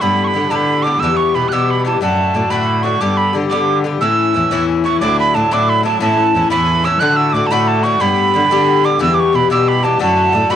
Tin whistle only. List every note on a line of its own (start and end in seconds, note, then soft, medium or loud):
0.01 0.26 B5 loud
0.24 0.52 B5 loud
0.24 0.29 C#6 medium
0.51 0.57 A5 medium
0.55 0.84 B5 loud
0.82 1.01 D6 medium
1.00 1.18 E6 loud
1.16 1.36 C#6 loud
1.35 1.50 B5 medium
1.48 1.54 F#6 medium
1.53 1.72 E6 medium
1.70 1.86 B5 medium
1.86 2.01 A5 medium
2.03 2.52 A5 loud
2.51 2.85 B5 medium
2.83 3.02 C#6 loud
3.01 3.19 D6 loud
3.17 3.35 B5 loud
3.50 3.78 D6 loud
4.01 4.64 E6 loud
4.85 5.00 C#6 medium
5.00 5.16 D6 loud
5.19 5.36 B5 loud
5.35 5.54 A5 medium
5.53 5.71 D6 loud
5.69 5.84 B5 medium
5.85 6.00 A5 medium
6.01 6.48 A5 loud
6.51 6.86 B5 loud
6.85 7.01 E6 loud
6.99 7.18 F#6 loud
7.16 7.29 E6 loud
7.29 7.48 D6 loud
7.29 7.34 E6 medium
7.47 7.53 A5 medium
7.51 7.69 B5 loud
7.68 7.85 A5 loud
7.83 8.02 C#6 loud
8.01 8.87 B5 loud
8.85 9.02 D6 loud
9.02 9.16 E6 loud
9.15 9.22 D6 medium
9.20 9.37 C#6 medium
9.36 9.51 B5 medium
9.51 9.70 E6 loud
9.68 9.85 B5 medium
9.84 10.01 A5 medium
10.03 10.52 A5 loud
10.51 10.56 B5 loud